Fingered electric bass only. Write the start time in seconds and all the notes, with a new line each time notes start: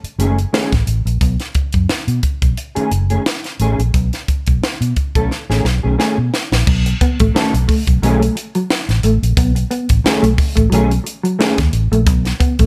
0.04 muted fingered electric bass stroke
0.18 F#1
0.72 A1
0.87 A1
1.05 A#1
1.21 B1
1.74 F#2
1.89 muted fingered electric bass stroke
2.07 B2
2.42 B1
2.77 muted fingered electric bass stroke
2.91 F#1
3.60 A1
3.79 A#1
3.94 B1
4.47 B1
4.62 muted fingered electric bass stroke
4.81 B2
5.16 B1
5.50 A1
5.65 B1
5.84 B1
6.18 B2
6.52 A#1
6.67 B1
7.20 A1
7.35 muted fingered electric bass stroke
7.54 B1
7.87 B1
8.03 B1
8.89 A1
9.03 A1
9.23 A#1
9.37 B1
9.90 A1
10.04 muted fingered electric bass stroke
10.23 B1
10.57 A1
10.72 B1
11.58 D#2
11.73 A1
11.92 A#1
12.07 B1
12.59 A1